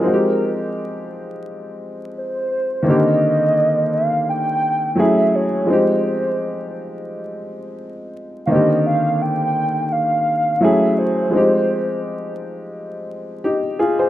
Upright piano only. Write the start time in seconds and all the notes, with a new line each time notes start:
0.00 F3 G#3 C4
0.05 D#4 F#4
0.13 G4
2.83 D#3 A#3 C4
2.88 D3 G4
4.95 F#3 A3 C#4 E4
5.00 G#4
5.65 F3 G#3 C4
5.71 D#4 G4
8.47 D#3 A#3 C4
8.53 D3 G4
10.61 F#3 A3 C#4 E4 G#4
11.29 F3 G#3 C4
11.35 D#4 G4
13.44 D#4 G4
13.79 F4 G#4
13.99 G#4 C5